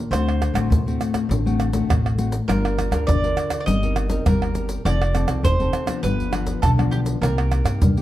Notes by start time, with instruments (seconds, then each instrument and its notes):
Already playing: mandolin A#4
0.11 upright bass D2, nylon-string guitar D3 A3 C4 F#4, mandolin C5, pandeiro, tamborim, shaker, surdo
0.29 pandeiro, tamborim, shaker
0.42 pandeiro, tamborim, shaker, surdo
0.54 upright bass A1, nylon-string guitar A3 C4 F#4, pandeiro, tamborim, shaker, surdo
0.70 upright bass D2, nylon-string guitar A2, pandeiro, shaker, surdo
0.86 nylon-string guitar A3 C4 F#4, pandeiro, shaker
1.01 pandeiro, tamborim, shaker
1.14 pandeiro, tamborim, shaker, surdo
1.29 upright bass A1, nylon-string guitar D3, pandeiro, shaker, surdo
1.46 nylon-string guitar A3 C4 F#4, pandeiro, shaker, surdo
1.60 pandeiro, tamborim, shaker
1.73 nylon-string guitar A3 C4 F#4, pandeiro, shaker, surdo
1.89 upright bass A1, nylon-string guitar A2, pandeiro, tamborim, shaker, surdo
2.06 pandeiro, tamborim, shaker
2.18 nylon-string guitar A3 C4 F#4, pandeiro, shaker
2.32 pandeiro, shaker
2.48 upright bass G1, nylon-string guitar G3 D4 F4 A#4, mandolin A#4, pandeiro, tamborim, shaker, surdo
2.65 pandeiro, tamborim, shaker
2.79 pandeiro, tamborim, shaker, surdo
2.91 upright bass D2, nylon-string guitar D4 F4 A#4, pandeiro, tamborim, shaker, surdo
3.07 upright bass G1, nylon-string guitar D3, mandolin D5, pandeiro, shaker, surdo
3.23 nylon-string guitar D4 F4 A#4, pandeiro, shaker
3.37 pandeiro, tamborim, shaker
3.50 pandeiro, tamborim, shaker, surdo
3.60 mandolin D5
3.66 upright bass G1, nylon-string guitar G3 C4 D#4 A#4, mandolin D#5, pandeiro, shaker, surdo
3.82 nylon-string guitar C4 D#4 A#4, pandeiro, shaker, surdo
3.96 pandeiro, tamborim, shaker
4.09 nylon-string guitar C4 D#4 A#4, pandeiro, shaker, surdo
4.26 upright bass G1, nylon-string guitar G3, mandolin A#4, pandeiro, tamborim, shaker, surdo
4.42 pandeiro, tamborim, shaker
4.55 nylon-string guitar C4 D#4 A#4, pandeiro, shaker
4.69 pandeiro, shaker
4.85 upright bass F1, nylon-string guitar F3 C4 D#4 A4, mandolin D5, pandeiro, tamborim, shaker, surdo
5.02 pandeiro, tamborim, shaker
5.14 nylon-string guitar C4 D#4 A4, pandeiro, tamborim, shaker, surdo
5.27 upright bass C2, pandeiro, tamborim, shaker, surdo
5.43 upright bass F1, nylon-string guitar C3, mandolin C5, pandeiro, shaker, surdo
5.60 nylon-string guitar C4 D#4 A4, pandeiro, shaker
5.73 pandeiro, tamborim, shaker
5.86 nylon-string guitar F3 B3 D4, pandeiro, tamborim, shaker, surdo
6.02 upright bass G1, nylon-string guitar G2, mandolin B4, pandeiro, shaker, surdo
6.20 pandeiro, shaker, surdo
6.31 nylon-string guitar F3 B3 D4, pandeiro, tamborim, shaker
6.47 pandeiro, shaker, surdo
6.62 upright bass B1, nylon-string guitar D3, mandolin A4, pandeiro, tamborim, shaker, surdo
6.78 nylon-string guitar F3 B3 D4, pandeiro, tamborim, shaker
6.91 mandolin G4, pandeiro
7.06 pandeiro, shaker
7.21 upright bass C2, nylon-string guitar C3 A#3 D#4 G4, mandolin A#4, pandeiro, tamborim, shaker, surdo
7.38 pandeiro, tamborim, shaker
7.51 pandeiro, tamborim, shaker
7.64 upright bass G2, nylon-string guitar A#3 D#4 G4, pandeiro, tamborim, shaker, surdo
7.81 upright bass C2, nylon-string guitar G2, pandeiro, shaker, surdo
7.97 nylon-string guitar A#3 D#4 G4, pandeiro, shaker